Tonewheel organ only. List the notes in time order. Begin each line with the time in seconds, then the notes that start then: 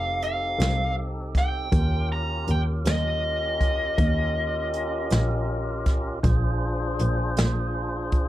Already playing: C4 D#4 G4 A4
1.71 C#4 F4 G4 A#4
6.23 D4 F4 G#4 C5